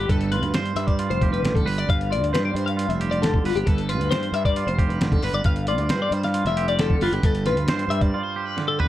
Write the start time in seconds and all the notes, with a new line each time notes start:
Already playing: G3 F4 G4 B4
0.09 G1 G2 A4, kick, closed hi-hat
0.21 closed hi-hat
0.32 F4 B4, closed hi-hat
0.43 D2, closed hi-hat
0.54 G2 C5, snare, closed hi-hat
0.65 closed hi-hat
0.76 G2 G3 E5, closed hi-hat
0.87 D5, kick, closed hi-hat
0.99 F4, closed hi-hat
1.10 F1 C5, closed hi-hat
1.21 G4, kick, closed hi-hat
1.33 B4, closed hi-hat
1.42 A1 D3, snare, closed hi-hat
1.55 A4, kick, closed hi-hat
1.66 G1 B4, open hi-hat
1.78 D5, closed hi-hat
1.87 G1 G2 F5, kick, closed hi-hat
2.01 closed hi-hat
2.10 F4 D5, closed hi-hat
2.21 D2, closed hi-hat
2.33 G2 B4 C5, snare, closed hi-hat
2.45 D5
2.54 G2 G3 C5, closed hi-hat
2.66 F5, closed hi-hat
2.77 F4, closed hi-hat
2.89 F1 E5, closed hi-hat
3.01 G4, closed hi-hat
3.11 D5, closed hi-hat
3.22 D3 A4, snare, closed hi-hat
3.34 kick
3.44 G1 F4 B4, open hi-hat
3.55 G1 G4, closed hi-hat
3.66 G1 G2 A4, kick, closed hi-hat
3.78 closed hi-hat
3.89 F4 B4, closed hi-hat
3.99 D2, closed hi-hat
4.11 G2 C5, snare, closed hi-hat
4.23 closed hi-hat
4.32 G2 G3 E5, closed hi-hat
4.45 D5, kick, closed hi-hat
4.56 F4, closed hi-hat
4.67 F1 C5, closed hi-hat
4.78 G4, kick, closed hi-hat
4.89 B4, closed hi-hat
5.01 D3, snare, closed hi-hat
5.12 A4, kick, closed hi-hat
5.23 G1 B4, open hi-hat
5.33 G1 D5, closed hi-hat
5.44 G1 G2 F5, kick, closed hi-hat
5.56 closed hi-hat
5.67 F4 D5, closed hi-hat
5.78 D2, closed hi-hat
5.89 G2 B4 C5, snare, closed hi-hat
6.02 D5
6.11 G2 G3 C5, closed hi-hat
6.23 F5, snare, closed hi-hat
6.34 F4, closed hi-hat
6.45 F1 E5, snare, closed hi-hat
6.57 G4, closed hi-hat
6.68 D5, closed hi-hat
6.79 D3 A4, snare, closed hi-hat
6.90 kick
7.01 G1 F4 B4, snare, open hi-hat
7.12 G1 G4, closed hi-hat
7.23 G1 G2 A4, kick, closed hi-hat
7.35 closed hi-hat
7.46 F4 B4, snare, closed hi-hat
7.56 D2, closed hi-hat
7.67 G2 C5, snare, closed hi-hat
7.79 closed hi-hat
7.88 G2 G3 E5, closed hi-hat
8.01 D5, kick, closed hi-hat
8.14 F4
8.23 C5
8.36 G4
8.46 B4
8.57 D3, snare
8.68 A4
8.79 B4, mid tom